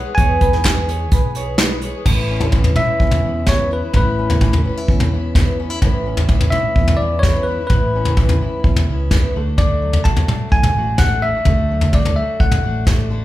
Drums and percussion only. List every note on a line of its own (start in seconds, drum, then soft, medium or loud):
0.17 kick loud
0.17 closed hi-hat medium
0.41 kick medium
0.41 closed hi-hat medium
0.53 snare soft
0.65 kick medium
0.65 snare loud
0.65 clap medium
0.65 closed hi-hat medium
0.89 closed hi-hat medium
1.11 kick loud
1.11 closed hi-hat medium
1.35 closed hi-hat medium
1.58 snare medium
1.58 clap medium
1.58 closed hi-hat medium
1.81 closed hi-hat medium
2.06 kick medium
2.06 floor tom medium
2.06 crash medium
2.40 floor tom medium
2.52 kick medium
2.52 mid tom medium
2.64 floor tom medium
2.76 mid tom medium
3.00 kick medium
3.11 floor tom medium
3.11 mid tom medium
3.46 kick medium
3.46 snare medium
3.46 floor tom medium
3.93 kick medium
3.93 floor tom medium
4.30 floor tom medium
4.41 kick medium
4.41 mid tom medium
4.53 floor tom medium
4.88 kick medium
5.00 floor tom medium
5.00 mid tom medium
5.35 kick medium
5.35 snare medium
5.35 floor tom medium
5.82 kick medium
5.82 floor tom medium
6.17 floor tom medium
6.29 kick medium
6.29 mid tom medium
6.41 floor tom medium
6.52 mid tom medium
6.76 kick medium
6.88 floor tom medium
6.88 mid tom medium
7.23 kick medium
7.23 snare medium
7.23 floor tom medium
7.70 kick medium
7.70 floor tom medium
8.05 floor tom medium
8.17 kick medium
8.17 mid tom medium
8.29 floor tom medium
8.64 kick loud
8.76 floor tom medium
8.76 mid tom medium
9.11 kick medium
9.11 snare medium
9.11 floor tom medium
9.58 kick medium
9.58 floor tom medium
9.93 floor tom medium
10.05 kick medium
10.05 mid tom medium
10.16 floor tom medium
10.28 mid tom medium
10.52 kick loud
10.63 floor tom medium
10.63 mid tom medium
10.98 kick medium
10.98 snare medium
10.98 floor tom medium
11.45 kick medium
11.45 floor tom medium
11.81 floor tom medium
11.93 kick medium
11.93 mid tom medium
12.05 floor tom medium
12.40 kick medium
12.51 floor tom medium
12.51 mid tom medium
12.87 kick medium
12.87 snare medium
12.87 floor tom medium